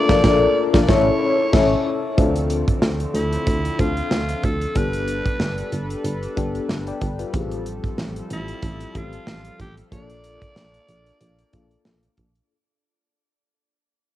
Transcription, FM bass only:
0, 0, Header, 1, 2, 480
1, 0, Start_track
1, 0, Key_signature, -1, "minor"
1, 0, Tempo, 645161
1, 1617, Time_signature, 4, 2, 24, 8
1, 10532, End_track
2, 0, Start_track
2, 0, Title_t, "FM bass"
2, 0, Program_c, 0, 39
2, 69, Note_on_c, 0, 34, 114
2, 161, Note_off_c, 0, 34, 0
2, 176, Note_on_c, 0, 34, 106
2, 344, Note_off_c, 0, 34, 0
2, 551, Note_on_c, 0, 34, 109
2, 642, Note_off_c, 0, 34, 0
2, 657, Note_on_c, 0, 33, 105
2, 825, Note_off_c, 0, 33, 0
2, 1139, Note_on_c, 0, 33, 113
2, 1306, Note_off_c, 0, 33, 0
2, 1620, Note_on_c, 0, 38, 104
2, 1965, Note_off_c, 0, 38, 0
2, 2101, Note_on_c, 0, 38, 100
2, 2273, Note_off_c, 0, 38, 0
2, 2337, Note_on_c, 0, 38, 92
2, 2510, Note_off_c, 0, 38, 0
2, 2581, Note_on_c, 0, 38, 97
2, 2753, Note_off_c, 0, 38, 0
2, 2821, Note_on_c, 0, 38, 98
2, 2993, Note_off_c, 0, 38, 0
2, 3061, Note_on_c, 0, 38, 101
2, 3233, Note_off_c, 0, 38, 0
2, 3301, Note_on_c, 0, 38, 100
2, 3472, Note_off_c, 0, 38, 0
2, 3540, Note_on_c, 0, 31, 93
2, 3885, Note_off_c, 0, 31, 0
2, 4018, Note_on_c, 0, 31, 99
2, 4191, Note_off_c, 0, 31, 0
2, 4260, Note_on_c, 0, 31, 100
2, 4432, Note_off_c, 0, 31, 0
2, 4496, Note_on_c, 0, 31, 98
2, 4670, Note_off_c, 0, 31, 0
2, 4740, Note_on_c, 0, 31, 99
2, 4912, Note_off_c, 0, 31, 0
2, 4978, Note_on_c, 0, 31, 98
2, 5151, Note_off_c, 0, 31, 0
2, 5221, Note_on_c, 0, 31, 100
2, 5393, Note_off_c, 0, 31, 0
2, 5460, Note_on_c, 0, 33, 91
2, 5805, Note_off_c, 0, 33, 0
2, 5938, Note_on_c, 0, 33, 97
2, 6111, Note_off_c, 0, 33, 0
2, 6182, Note_on_c, 0, 33, 89
2, 6353, Note_off_c, 0, 33, 0
2, 6420, Note_on_c, 0, 33, 95
2, 6592, Note_off_c, 0, 33, 0
2, 6661, Note_on_c, 0, 33, 102
2, 6833, Note_off_c, 0, 33, 0
2, 6897, Note_on_c, 0, 33, 91
2, 7070, Note_off_c, 0, 33, 0
2, 7140, Note_on_c, 0, 33, 94
2, 7312, Note_off_c, 0, 33, 0
2, 7381, Note_on_c, 0, 34, 98
2, 7726, Note_off_c, 0, 34, 0
2, 7859, Note_on_c, 0, 34, 93
2, 8031, Note_off_c, 0, 34, 0
2, 8100, Note_on_c, 0, 34, 87
2, 8272, Note_off_c, 0, 34, 0
2, 8341, Note_on_c, 0, 34, 101
2, 8512, Note_off_c, 0, 34, 0
2, 8580, Note_on_c, 0, 34, 99
2, 8752, Note_off_c, 0, 34, 0
2, 8822, Note_on_c, 0, 34, 99
2, 8993, Note_off_c, 0, 34, 0
2, 9061, Note_on_c, 0, 34, 96
2, 9232, Note_off_c, 0, 34, 0
2, 10532, End_track
0, 0, End_of_file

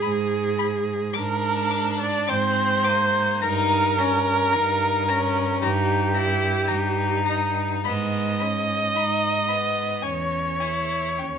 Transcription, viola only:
0, 0, Header, 1, 2, 480
1, 0, Start_track
1, 0, Tempo, 1123596
1, 1460, Time_signature, 4, 2, 24, 8
1, 1937, Tempo, 1071429
1, 2897, Tempo, 1162791
1, 3377, Tempo, 1090909
1, 4337, Tempo, 1169591
1, 4897, End_track
2, 0, Start_track
2, 0, Title_t, "Viola"
2, 0, Program_c, 0, 41
2, 0, Note_on_c, 0, 68, 112
2, 493, Note_on_c, 0, 70, 114
2, 500, Note_off_c, 0, 68, 0
2, 851, Note_off_c, 0, 70, 0
2, 853, Note_on_c, 0, 74, 119
2, 978, Note_on_c, 0, 72, 127
2, 985, Note_off_c, 0, 74, 0
2, 1463, Note_on_c, 0, 70, 126
2, 1469, Note_off_c, 0, 72, 0
2, 2423, Note_off_c, 0, 70, 0
2, 2425, Note_on_c, 0, 67, 127
2, 3123, Note_off_c, 0, 67, 0
2, 3136, Note_on_c, 0, 63, 99
2, 3374, Note_off_c, 0, 63, 0
2, 3382, Note_on_c, 0, 75, 118
2, 4340, Note_on_c, 0, 73, 106
2, 4346, Note_off_c, 0, 75, 0
2, 4897, Note_off_c, 0, 73, 0
2, 4897, End_track
0, 0, End_of_file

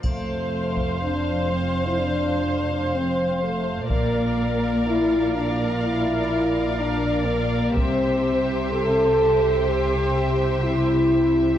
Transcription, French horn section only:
0, 0, Header, 1, 2, 480
1, 0, Start_track
1, 0, Key_signature, -1, "major"
1, 0, Tempo, 500000
1, 11119, End_track
2, 0, Start_track
2, 0, Title_t, "French horn section"
2, 0, Program_c, 0, 60
2, 29, Note_on_c, 0, 57, 53
2, 920, Note_off_c, 0, 57, 0
2, 967, Note_on_c, 0, 62, 51
2, 1418, Note_off_c, 0, 62, 0
2, 1433, Note_on_c, 0, 60, 42
2, 1774, Note_on_c, 0, 64, 44
2, 1776, Note_off_c, 0, 60, 0
2, 1889, Note_off_c, 0, 64, 0
2, 1891, Note_on_c, 0, 62, 50
2, 2814, Note_on_c, 0, 60, 58
2, 2817, Note_off_c, 0, 62, 0
2, 3278, Note_off_c, 0, 60, 0
2, 3282, Note_on_c, 0, 57, 48
2, 3735, Note_off_c, 0, 57, 0
2, 3744, Note_on_c, 0, 58, 60
2, 4652, Note_off_c, 0, 58, 0
2, 4665, Note_on_c, 0, 64, 72
2, 5123, Note_on_c, 0, 62, 55
2, 5131, Note_off_c, 0, 64, 0
2, 5475, Note_off_c, 0, 62, 0
2, 5482, Note_on_c, 0, 65, 57
2, 5588, Note_on_c, 0, 64, 72
2, 5597, Note_off_c, 0, 65, 0
2, 6501, Note_off_c, 0, 64, 0
2, 6524, Note_on_c, 0, 62, 67
2, 6969, Note_on_c, 0, 58, 58
2, 6987, Note_off_c, 0, 62, 0
2, 7438, Note_on_c, 0, 60, 77
2, 7441, Note_off_c, 0, 58, 0
2, 8190, Note_off_c, 0, 60, 0
2, 8354, Note_on_c, 0, 69, 89
2, 9273, Note_off_c, 0, 69, 0
2, 9284, Note_on_c, 0, 67, 69
2, 10216, Note_on_c, 0, 64, 79
2, 10220, Note_off_c, 0, 67, 0
2, 11119, Note_off_c, 0, 64, 0
2, 11119, End_track
0, 0, End_of_file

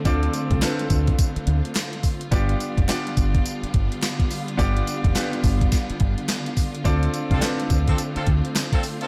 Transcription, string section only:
0, 0, Header, 1, 2, 480
1, 0, Start_track
1, 0, Tempo, 566038
1, 49, Time_signature, 4, 2, 24, 8
1, 7695, End_track
2, 0, Start_track
2, 0, Title_t, "String section"
2, 0, Program_c, 0, 48
2, 0, Note_on_c, 0, 50, 80
2, 0, Note_on_c, 0, 57, 78
2, 0, Note_on_c, 0, 60, 73
2, 0, Note_on_c, 0, 65, 88
2, 1932, Note_off_c, 0, 57, 0
2, 1933, Note_off_c, 0, 60, 0
2, 1934, Note_off_c, 0, 50, 0
2, 1963, Note_on_c, 0, 55, 80
2, 1965, Note_on_c, 0, 50, 81
2, 1969, Note_on_c, 0, 59, 79
2, 5772, Note_off_c, 0, 55, 0
2, 5775, Note_off_c, 0, 59, 0
2, 5810, Note_on_c, 0, 57, 76
2, 5812, Note_on_c, 0, 60, 78
2, 7695, Note_off_c, 0, 50, 0
2, 7695, Note_off_c, 0, 57, 0
2, 7695, Note_off_c, 0, 60, 0
2, 7695, Note_off_c, 0, 65, 0
2, 7695, End_track
0, 0, End_of_file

